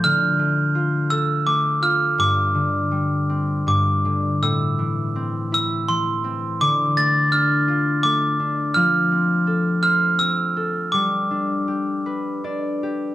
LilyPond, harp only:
\new Staff \with { instrumentName = "Harp" } { \time 3/4 \key g \mixolydian \tempo 4 = 82 << { r2. | r2. | r2. | r2. |
r2. | r2 d''4 | } \\ { d8 a8 f'8 a'8 a8 f'8 | g,8 d8 g8 c'8 g,8 d8 | a,8 e8 c'8 e'8 e8 c'8 | d8 a8 d'8 f'8 a8 d'8 |
f8 c'8 a'8 c''8 c'8 a'8 | g8 d'8 g'8 b'8 d'8 g'8 | } >> }